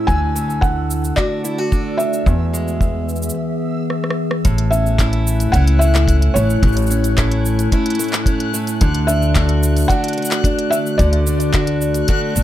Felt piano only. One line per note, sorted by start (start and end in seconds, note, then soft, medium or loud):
0.07 0.64 G#5 loud
0.61 1.18 F#5 medium
1.16 2.01 D5 medium
1.97 3.31 E5 loud
4.71 5.49 E5 loud
5.52 5.58 F#5 loud
5.79 6.36 E5 loud
6.34 8.49 C#5 loud
9.07 9.85 E5 loud
9.88 10.40 F#5 loud
10.70 10.77 E5 loud
10.98 11.49 D5 loud